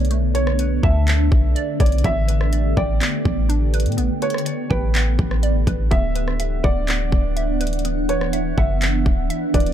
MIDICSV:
0, 0, Header, 1, 6, 480
1, 0, Start_track
1, 0, Tempo, 483871
1, 107, Time_signature, 4, 2, 24, 8
1, 9656, End_track
2, 0, Start_track
2, 0, Title_t, "Felt piano"
2, 0, Program_c, 0, 0
2, 344, Note_on_c, 0, 73, 87
2, 796, Note_off_c, 0, 73, 0
2, 829, Note_on_c, 0, 76, 85
2, 1748, Note_off_c, 0, 76, 0
2, 1790, Note_on_c, 0, 74, 79
2, 2017, Note_off_c, 0, 74, 0
2, 2032, Note_on_c, 0, 76, 110
2, 2710, Note_off_c, 0, 76, 0
2, 2748, Note_on_c, 0, 74, 84
2, 3908, Note_off_c, 0, 74, 0
2, 4189, Note_on_c, 0, 73, 88
2, 4639, Note_off_c, 0, 73, 0
2, 4665, Note_on_c, 0, 71, 81
2, 5826, Note_off_c, 0, 71, 0
2, 5862, Note_on_c, 0, 76, 97
2, 6545, Note_off_c, 0, 76, 0
2, 6585, Note_on_c, 0, 74, 93
2, 7746, Note_off_c, 0, 74, 0
2, 8026, Note_on_c, 0, 73, 90
2, 8478, Note_off_c, 0, 73, 0
2, 8509, Note_on_c, 0, 76, 78
2, 9428, Note_off_c, 0, 76, 0
2, 9468, Note_on_c, 0, 74, 78
2, 9656, Note_off_c, 0, 74, 0
2, 9656, End_track
3, 0, Start_track
3, 0, Title_t, "Synth pluck"
3, 0, Program_c, 1, 84
3, 0, Note_on_c, 1, 59, 73
3, 0, Note_on_c, 1, 62, 106
3, 0, Note_on_c, 1, 73, 83
3, 0, Note_on_c, 1, 81, 112
3, 0, Note_on_c, 1, 86, 88
3, 104, Note_off_c, 1, 86, 0
3, 106, Note_on_c, 1, 57, 89
3, 332, Note_off_c, 1, 73, 0
3, 344, Note_on_c, 1, 73, 84
3, 345, Note_off_c, 1, 81, 0
3, 583, Note_off_c, 1, 59, 0
3, 587, Note_on_c, 1, 71, 87
3, 823, Note_on_c, 1, 81, 104
3, 1059, Note_off_c, 1, 62, 0
3, 1071, Note_on_c, 1, 62, 71
3, 1542, Note_on_c, 1, 74, 113
3, 1546, Note_off_c, 1, 57, 0
3, 1774, Note_off_c, 1, 73, 0
3, 1786, Note_on_c, 1, 73, 91
3, 2023, Note_on_c, 1, 59, 85
3, 2024, Note_off_c, 1, 74, 0
3, 2025, Note_off_c, 1, 81, 0
3, 2026, Note_off_c, 1, 73, 0
3, 2027, Note_off_c, 1, 71, 0
3, 2029, Note_off_c, 1, 62, 0
3, 2261, Note_on_c, 1, 71, 78
3, 2506, Note_on_c, 1, 74, 82
3, 2745, Note_on_c, 1, 79, 112
3, 2972, Note_off_c, 1, 59, 0
3, 2984, Note_on_c, 1, 59, 76
3, 3463, Note_on_c, 1, 62, 99
3, 3696, Note_off_c, 1, 71, 0
3, 3708, Note_on_c, 1, 71, 89
3, 3930, Note_off_c, 1, 59, 0
3, 3942, Note_on_c, 1, 59, 90
3, 3946, Note_off_c, 1, 74, 0
3, 4175, Note_off_c, 1, 71, 0
3, 4186, Note_off_c, 1, 79, 0
3, 4187, Note_on_c, 1, 71, 85
3, 4418, Note_on_c, 1, 74, 83
3, 4660, Note_on_c, 1, 79, 110
3, 4898, Note_off_c, 1, 59, 0
3, 4905, Note_off_c, 1, 62, 0
3, 4910, Note_on_c, 1, 59, 72
3, 5374, Note_off_c, 1, 74, 0
3, 5386, Note_on_c, 1, 74, 106
3, 5616, Note_off_c, 1, 71, 0
3, 5628, Note_on_c, 1, 71, 79
3, 5851, Note_off_c, 1, 59, 0
3, 5863, Note_off_c, 1, 79, 0
3, 5863, Note_on_c, 1, 59, 85
3, 5867, Note_off_c, 1, 71, 0
3, 5867, Note_off_c, 1, 74, 0
3, 6105, Note_on_c, 1, 71, 88
3, 6349, Note_on_c, 1, 76, 86
3, 6582, Note_on_c, 1, 78, 103
3, 6811, Note_off_c, 1, 59, 0
3, 6823, Note_on_c, 1, 59, 79
3, 7294, Note_off_c, 1, 76, 0
3, 7306, Note_on_c, 1, 76, 105
3, 7533, Note_off_c, 1, 71, 0
3, 7544, Note_on_c, 1, 71, 91
3, 7775, Note_off_c, 1, 59, 0
3, 7787, Note_on_c, 1, 59, 77
3, 8011, Note_off_c, 1, 71, 0
3, 8023, Note_on_c, 1, 71, 88
3, 8025, Note_off_c, 1, 78, 0
3, 8252, Note_off_c, 1, 76, 0
3, 8263, Note_on_c, 1, 76, 87
3, 8506, Note_on_c, 1, 78, 102
3, 8736, Note_off_c, 1, 59, 0
3, 8748, Note_on_c, 1, 59, 73
3, 9213, Note_off_c, 1, 76, 0
3, 9225, Note_on_c, 1, 76, 103
3, 9454, Note_off_c, 1, 71, 0
3, 9466, Note_on_c, 1, 71, 82
3, 9656, Note_off_c, 1, 59, 0
3, 9656, Note_off_c, 1, 71, 0
3, 9656, Note_off_c, 1, 76, 0
3, 9656, Note_off_c, 1, 78, 0
3, 9656, End_track
4, 0, Start_track
4, 0, Title_t, "Ambient pad"
4, 0, Program_c, 2, 92
4, 0, Note_on_c, 2, 50, 75
4, 0, Note_on_c, 2, 57, 70
4, 0, Note_on_c, 2, 59, 72
4, 0, Note_on_c, 2, 62, 86
4, 1989, Note_off_c, 2, 59, 0
4, 1990, Note_off_c, 2, 50, 0
4, 1990, Note_off_c, 2, 62, 0
4, 2026, Note_on_c, 2, 50, 76
4, 2026, Note_on_c, 2, 59, 71
4, 2026, Note_on_c, 2, 67, 83
4, 5828, Note_off_c, 2, 50, 0
4, 5828, Note_off_c, 2, 59, 0
4, 5828, Note_off_c, 2, 67, 0
4, 5829, Note_off_c, 2, 57, 0
4, 5869, Note_on_c, 2, 52, 75
4, 5870, Note_on_c, 2, 59, 70
4, 5870, Note_on_c, 2, 78, 88
4, 5871, Note_on_c, 2, 62, 71
4, 9656, Note_off_c, 2, 52, 0
4, 9656, Note_off_c, 2, 59, 0
4, 9656, Note_off_c, 2, 62, 0
4, 9656, Note_off_c, 2, 78, 0
4, 9656, End_track
5, 0, Start_track
5, 0, Title_t, "808-style bass"
5, 0, Program_c, 3, 38
5, 0, Note_on_c, 3, 35, 106
5, 787, Note_off_c, 3, 35, 0
5, 827, Note_on_c, 3, 38, 112
5, 1288, Note_off_c, 3, 38, 0
5, 1307, Note_on_c, 3, 35, 106
5, 1537, Note_off_c, 3, 35, 0
5, 1786, Note_on_c, 3, 35, 107
5, 2017, Note_off_c, 3, 35, 0
5, 2028, Note_on_c, 3, 33, 112
5, 2719, Note_off_c, 3, 33, 0
5, 2749, Note_on_c, 3, 33, 110
5, 2978, Note_off_c, 3, 33, 0
5, 3227, Note_on_c, 3, 33, 107
5, 3827, Note_on_c, 3, 45, 104
5, 3842, Note_off_c, 3, 33, 0
5, 3947, Note_on_c, 3, 33, 94
5, 3962, Note_off_c, 3, 45, 0
5, 4061, Note_off_c, 3, 33, 0
5, 4669, Note_on_c, 3, 33, 109
5, 5129, Note_off_c, 3, 33, 0
5, 5147, Note_on_c, 3, 33, 110
5, 5607, Note_off_c, 3, 33, 0
5, 5625, Note_on_c, 3, 33, 108
5, 5856, Note_off_c, 3, 33, 0
5, 5866, Note_on_c, 3, 26, 106
5, 6558, Note_off_c, 3, 26, 0
5, 6587, Note_on_c, 3, 26, 113
5, 7048, Note_off_c, 3, 26, 0
5, 7066, Note_on_c, 3, 26, 113
5, 8467, Note_off_c, 3, 26, 0
5, 8508, Note_on_c, 3, 30, 106
5, 8968, Note_off_c, 3, 30, 0
5, 8987, Note_on_c, 3, 26, 108
5, 9217, Note_off_c, 3, 26, 0
5, 9465, Note_on_c, 3, 26, 107
5, 9656, Note_off_c, 3, 26, 0
5, 9656, End_track
6, 0, Start_track
6, 0, Title_t, "Drums"
6, 47, Note_on_c, 9, 42, 45
6, 107, Note_off_c, 9, 42, 0
6, 107, Note_on_c, 9, 42, 85
6, 206, Note_off_c, 9, 42, 0
6, 346, Note_on_c, 9, 42, 78
6, 446, Note_off_c, 9, 42, 0
6, 467, Note_on_c, 9, 37, 100
6, 566, Note_off_c, 9, 37, 0
6, 585, Note_on_c, 9, 42, 85
6, 684, Note_off_c, 9, 42, 0
6, 827, Note_on_c, 9, 36, 99
6, 927, Note_off_c, 9, 36, 0
6, 1068, Note_on_c, 9, 42, 75
6, 1071, Note_on_c, 9, 39, 122
6, 1167, Note_off_c, 9, 42, 0
6, 1171, Note_off_c, 9, 39, 0
6, 1307, Note_on_c, 9, 36, 102
6, 1406, Note_off_c, 9, 36, 0
6, 1548, Note_on_c, 9, 42, 88
6, 1648, Note_off_c, 9, 42, 0
6, 1786, Note_on_c, 9, 36, 97
6, 1787, Note_on_c, 9, 42, 80
6, 1847, Note_off_c, 9, 42, 0
6, 1847, Note_on_c, 9, 42, 69
6, 1885, Note_off_c, 9, 36, 0
6, 1907, Note_off_c, 9, 42, 0
6, 1907, Note_on_c, 9, 42, 57
6, 1968, Note_off_c, 9, 42, 0
6, 1968, Note_on_c, 9, 42, 47
6, 2027, Note_on_c, 9, 36, 114
6, 2028, Note_off_c, 9, 42, 0
6, 2028, Note_on_c, 9, 42, 85
6, 2126, Note_off_c, 9, 36, 0
6, 2127, Note_off_c, 9, 42, 0
6, 2267, Note_on_c, 9, 42, 79
6, 2366, Note_off_c, 9, 42, 0
6, 2389, Note_on_c, 9, 37, 95
6, 2488, Note_off_c, 9, 37, 0
6, 2506, Note_on_c, 9, 42, 85
6, 2605, Note_off_c, 9, 42, 0
6, 2749, Note_on_c, 9, 36, 96
6, 2848, Note_off_c, 9, 36, 0
6, 2989, Note_on_c, 9, 42, 74
6, 2992, Note_on_c, 9, 39, 123
6, 3088, Note_off_c, 9, 42, 0
6, 3091, Note_off_c, 9, 39, 0
6, 3228, Note_on_c, 9, 36, 104
6, 3327, Note_off_c, 9, 36, 0
6, 3468, Note_on_c, 9, 42, 90
6, 3568, Note_off_c, 9, 42, 0
6, 3707, Note_on_c, 9, 42, 81
6, 3768, Note_off_c, 9, 42, 0
6, 3768, Note_on_c, 9, 42, 68
6, 3828, Note_off_c, 9, 42, 0
6, 3828, Note_on_c, 9, 42, 55
6, 3888, Note_off_c, 9, 42, 0
6, 3888, Note_on_c, 9, 42, 45
6, 3948, Note_off_c, 9, 42, 0
6, 3948, Note_on_c, 9, 42, 85
6, 4047, Note_off_c, 9, 42, 0
6, 4186, Note_on_c, 9, 42, 67
6, 4267, Note_off_c, 9, 42, 0
6, 4267, Note_on_c, 9, 42, 68
6, 4309, Note_on_c, 9, 37, 94
6, 4348, Note_off_c, 9, 42, 0
6, 4348, Note_on_c, 9, 42, 64
6, 4409, Note_off_c, 9, 37, 0
6, 4426, Note_off_c, 9, 42, 0
6, 4426, Note_on_c, 9, 42, 83
6, 4525, Note_off_c, 9, 42, 0
6, 4668, Note_on_c, 9, 36, 98
6, 4767, Note_off_c, 9, 36, 0
6, 4908, Note_on_c, 9, 42, 68
6, 4911, Note_on_c, 9, 39, 123
6, 5007, Note_off_c, 9, 42, 0
6, 5011, Note_off_c, 9, 39, 0
6, 5147, Note_on_c, 9, 36, 101
6, 5246, Note_off_c, 9, 36, 0
6, 5269, Note_on_c, 9, 37, 94
6, 5369, Note_off_c, 9, 37, 0
6, 5387, Note_on_c, 9, 42, 90
6, 5486, Note_off_c, 9, 42, 0
6, 5625, Note_on_c, 9, 36, 93
6, 5628, Note_on_c, 9, 42, 75
6, 5724, Note_off_c, 9, 36, 0
6, 5727, Note_off_c, 9, 42, 0
6, 5866, Note_on_c, 9, 36, 117
6, 5867, Note_on_c, 9, 42, 87
6, 5965, Note_off_c, 9, 36, 0
6, 5966, Note_off_c, 9, 42, 0
6, 6106, Note_on_c, 9, 42, 79
6, 6205, Note_off_c, 9, 42, 0
6, 6226, Note_on_c, 9, 37, 94
6, 6326, Note_off_c, 9, 37, 0
6, 6345, Note_on_c, 9, 42, 83
6, 6445, Note_off_c, 9, 42, 0
6, 6588, Note_on_c, 9, 36, 99
6, 6687, Note_off_c, 9, 36, 0
6, 6827, Note_on_c, 9, 42, 71
6, 6830, Note_on_c, 9, 39, 123
6, 6926, Note_off_c, 9, 42, 0
6, 6929, Note_off_c, 9, 39, 0
6, 7066, Note_on_c, 9, 36, 103
6, 7166, Note_off_c, 9, 36, 0
6, 7307, Note_on_c, 9, 42, 89
6, 7407, Note_off_c, 9, 42, 0
6, 7546, Note_on_c, 9, 42, 80
6, 7607, Note_off_c, 9, 42, 0
6, 7607, Note_on_c, 9, 42, 70
6, 7667, Note_off_c, 9, 42, 0
6, 7667, Note_on_c, 9, 42, 58
6, 7727, Note_off_c, 9, 42, 0
6, 7727, Note_on_c, 9, 42, 45
6, 7786, Note_off_c, 9, 42, 0
6, 7786, Note_on_c, 9, 42, 82
6, 7886, Note_off_c, 9, 42, 0
6, 8026, Note_on_c, 9, 42, 77
6, 8126, Note_off_c, 9, 42, 0
6, 8148, Note_on_c, 9, 37, 94
6, 8247, Note_off_c, 9, 37, 0
6, 8265, Note_on_c, 9, 42, 83
6, 8364, Note_off_c, 9, 42, 0
6, 8507, Note_on_c, 9, 36, 99
6, 8607, Note_off_c, 9, 36, 0
6, 8748, Note_on_c, 9, 42, 73
6, 8751, Note_on_c, 9, 39, 123
6, 8847, Note_off_c, 9, 42, 0
6, 8850, Note_off_c, 9, 39, 0
6, 8987, Note_on_c, 9, 36, 105
6, 9086, Note_off_c, 9, 36, 0
6, 9227, Note_on_c, 9, 42, 92
6, 9327, Note_off_c, 9, 42, 0
6, 9465, Note_on_c, 9, 36, 97
6, 9466, Note_on_c, 9, 42, 78
6, 9526, Note_off_c, 9, 42, 0
6, 9526, Note_on_c, 9, 42, 68
6, 9564, Note_off_c, 9, 36, 0
6, 9587, Note_off_c, 9, 42, 0
6, 9587, Note_on_c, 9, 42, 57
6, 9656, Note_off_c, 9, 42, 0
6, 9656, End_track
0, 0, End_of_file